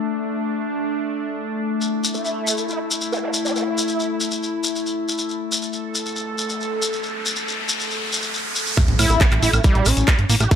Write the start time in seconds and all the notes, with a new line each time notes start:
Already playing: A3 D4
1.81 E4, shekere
2.04 shekere
2.14 A3, shekere
2.25 shekere
2.47 shekere
2.57 shekere
2.69 E4, shekere
2.91 shekere
3.01 shekere
3.12 A3, shekere
3.23 A3
3.33 shekere
3.45 C#4, shekere
3.56 A3, shekere
3.67 E4
3.78 shekere
3.88 shekere
4.00 shekere
4.20 shekere
4.31 shekere
4.43 shekere
4.64 shekere
4.76 shekere
4.86 shekere
5.08 shekere
5.18 shekere
5.29 A4, riser, shekere
5.52 shekere
5.62 shekere
5.73 shekere
5.95 shekere
6.06 shekere
6.16 shekere
6.38 shekere
6.49 shekere
6.61 shekere
6.82 shekere
6.93 shekere
7.03 shekere
7.26 shekere
7.36 shekere
7.48 shekere
7.69 shekere
7.80 shekere
7.91 shekere
8.12 shekere
8.22 shekere
8.34 shekere
8.55 shekere
8.66 shekere
8.77 A3, kick, closed hi-hat, impact, high woodblock, shekere
8.88 A1, closed hi-hat
8.99 A2 E4, open hi-hat, high woodblock, shekere
9.10 A1 A3, closed hi-hat, shekere
9.21 A#3, kick, clap, closed hi-hat, shekere
9.32 A1, clap, closed hi-hat, high woodblock
9.43 A1 E4, open hi-hat, shekere
9.53 A1, closed hi-hat, high woodblock, shekere
9.64 G3 E4, kick, closed hi-hat, shekere
9.75 A1, closed hi-hat
9.85 A1 C#4, open hi-hat, high woodblock, shekere
9.97 A1, closed hi-hat, shekere
10.07 A#3, kick, clap, closed hi-hat, high woodblock, shekere
10.19 G1, closed hi-hat
10.30 A1 A#3, open hi-hat, shekere
10.40 A1 A3 G4, closed hi-hat, high woodblock, shekere
10.51 A3, kick, closed hi-hat, shekere